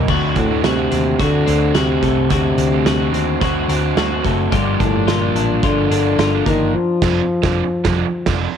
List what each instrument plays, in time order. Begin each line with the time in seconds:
Already playing: clean electric guitar A#3 D#4
0.08 picked electric bass D2, overdriven electric guitar D3 A3 C4 F#4, clean electric guitar D3 F#4, kick, crash
0.36 picked electric bass D2, trombone A2, clean electric guitar C4, kick, closed hi-hat
0.51 overdriven electric guitar A3 C4 F#4
0.64 picked electric bass D2, trombone C3, clean electric guitar F#4, snare, closed hi-hat
0.77 overdriven electric guitar A3 C4 F#4
0.91 picked electric bass D#2, clean electric guitar C4, closed hi-hat
1.19 picked electric bass D2, overdriven electric guitar D3 A3 C4 F#4, trombone D3, clean electric guitar F#4, kick, closed hi-hat
1.46 picked electric bass D2, overdriven electric guitar D3 A3 C4 F#4, clean electric guitar C4, closed hi-hat
1.75 picked electric bass D2, trombone C3, clean electric guitar F#4, snare, closed hi-hat
1.89 overdriven electric guitar A3 C4 F#4
2.03 picked electric bass C2, clean electric guitar A3, kick, closed hi-hat
2.30 picked electric bass D2, trombone C3, overdriven electric guitar D3 A3 C4 F#4, clean electric guitar D3 F#4, kick, closed hi-hat
2.58 picked electric bass D2, clean electric guitar C4, closed hi-hat
2.72 overdriven electric guitar A3 C4 F#4
2.85 picked electric bass D2, clean electric guitar F#4, snare, closed hi-hat
3.00 overdriven electric guitar A3 C4 F#4
3.12 picked electric bass D#2, clean electric guitar C4, closed hi-hat
3.41 picked electric bass D2, overdriven electric guitar D3 A3 C4 F#4, clean electric guitar F#4, kick, closed hi-hat
3.69 picked electric bass D2, overdriven electric guitar D3 A3 C4 F#4, clean electric guitar C4, closed hi-hat
3.97 picked electric bass D2, clean electric guitar F#4, snare, closed hi-hat
4.11 overdriven electric guitar A3 C4 F#4
4.24 picked electric bass F#1, clean electric guitar A3, kick, closed hi-hat
4.52 picked electric bass G1, overdriven electric guitar D3 F3 A#3 D4, clean electric guitar G3 F4, kick, closed hi-hat
4.80 picked electric bass G1, trombone A2, clean electric guitar D4, kick, closed hi-hat
4.95 overdriven electric guitar F3 A#3 D4
5.07 picked electric bass G1, trombone A#2, clean electric guitar F4, snare, closed hi-hat
5.21 overdriven electric guitar F3 A#3 D4
5.35 picked electric bass A1, clean electric guitar D4, closed hi-hat
5.63 picked electric bass G1, overdriven electric guitar D3 F3 A#3 D4, trombone D3, clean electric guitar F4, kick, closed hi-hat
5.91 picked electric bass G1, overdriven electric guitar G2 D3 F3 A#3 D4, clean electric guitar D4, closed hi-hat
6.18 picked electric bass G1, clean electric guitar F4, snare, closed hi-hat
6.33 overdriven electric guitar F3 A#3 D4
6.46 picked electric bass G1, trombone D#3, clean electric guitar A#3, kick, closed hi-hat
6.75 trombone F3
7.02 picked electric bass F1, overdriven electric guitar C4 D4 A4, kick, snare, crash
7.42 picked electric bass F1, overdriven electric guitar C4 D4 A4, kick, snare
7.84 picked electric bass F1, overdriven electric guitar F3 C4 D4 A4, kick, snare
8.26 picked electric bass F1, overdriven electric guitar F3 C4 D4 A4, kick, snare, crash